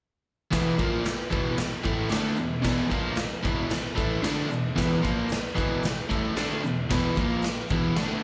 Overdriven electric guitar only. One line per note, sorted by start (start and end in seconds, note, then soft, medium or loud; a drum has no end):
0.51 0.77 E2 loud
0.51 0.78 B2 loud
0.51 0.78 E3 loud
0.78 1.04 A#2 medium
0.78 1.05 F3 medium
0.78 1.05 A#3 loud
1.04 muted overdriven electric guitar stroke medium
1.31 1.56 E2 medium
1.31 1.57 B2 loud
1.31 1.58 E3 loud
1.57 muted overdriven electric guitar stroke medium
1.84 2.09 A2 medium
1.84 2.10 E3 medium
1.84 2.09 A3 loud
2.09 2.36 D3 medium
2.09 2.36 A3 loud
2.09 2.37 D4 loud
2.37 2.58 E2 medium
2.37 2.58 B2 medium
2.62 2.89 E2 loud
2.62 2.89 B2 loud
2.62 2.89 E3 loud
2.90 3.16 A#2 medium
2.90 3.16 F3 loud
2.90 3.17 A#3 loud
3.17 muted overdriven electric guitar stroke medium
3.43 3.69 E2 loud
3.43 3.70 B2 medium
3.43 3.70 E3 loud
3.70 muted overdriven electric guitar stroke medium
3.95 4.22 A2 medium
3.95 4.23 E3 loud
3.95 4.22 A3 medium
4.22 4.49 D3 medium
4.22 4.49 A3 loud
4.22 4.50 D4 loud
4.49 4.71 E2 medium
4.49 4.71 B2 medium
4.76 5.02 E2 loud
4.76 5.01 B2 loud
4.76 5.02 E3 loud
5.02 5.29 A#2 medium
5.02 5.29 F3 medium
5.02 5.29 A#3 medium
5.30 muted overdriven electric guitar stroke medium
5.56 5.82 E2 loud
5.56 5.82 B2 loud
5.56 5.83 E3 loud
5.84 muted overdriven electric guitar stroke medium
6.09 6.36 A2 medium
6.09 6.36 E3 medium
6.09 6.35 A3 loud
6.36 6.63 D3 medium
6.36 6.63 A3 loud
6.36 6.63 D4 loud
6.64 6.85 E2 medium
6.64 6.85 B2 medium
6.91 7.16 E2 loud
6.91 7.16 B2 medium
6.91 7.17 E3 loud
7.17 7.43 A#2 medium
7.17 7.43 F3 medium
7.17 7.44 A#3 loud
7.45 muted overdriven electric guitar stroke medium
7.71 7.97 E2 medium
7.71 7.97 B2 medium
7.71 7.97 E3 loud
7.97 8.23 D3 medium
7.97 8.23 A3 medium
7.97 8.23 D4 medium